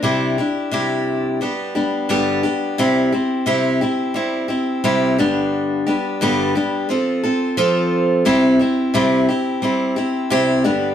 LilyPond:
\new Staff \with { instrumentName = "Steel-string acoustic guitar" } { \time 4/4 \key c \major \tempo 4 = 88 <c g d' e' g'>8 <d' e' g'>8 <c g d' e' g'>4 <g b d' g'>8 <g b d' g'>8 <g, d g b d' g'>8 <g b d' g'>8 | <c g c' e' g'>8 <c' e' g'>8 <c g c' e' g'>8 <c' e' g'>8 <g c' e' g'>8 <c' e' g'>8 <c g c' e' g'>8 <g, d g b d' g'>8~ | <g, d g b d' g'>8 <g b d' g'>8 <g, d g b d' g'>8 <g b d' g'>8 <f c' f' a'>8 <c' f' a'>8 <f c' f' a'>4 | <c g c' e' g'>8 <c' e' g'>8 <c g c' e' g'>8 <c' e' g'>8 <g c' e' g'>8 <c' e' g'>8 <c g c' e' g'>8 <g, d g b d' g'>8 | }